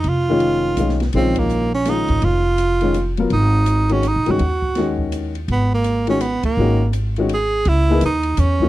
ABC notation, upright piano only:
X:1
M:3/4
L:1/8
Q:"Swing" 1/4=166
K:Abdor
V:1 name="Upright piano"
z [E,A,DF]3 [E,A,DF] z | [E,A,DF]3 z [E,A,DF]2- | [E,A,DF] z2 [E,A,DF] z [G,CFB] | z3 [E,A,DG] z [E,A,DG] |
z2 [E,A,DG]3 z | z3 [E,A,DG] z2 | [E,A,DG] z2 [E,A,DG] z2 | [K:C#dor] z [A,DGB] z3 [E,A,DF] |]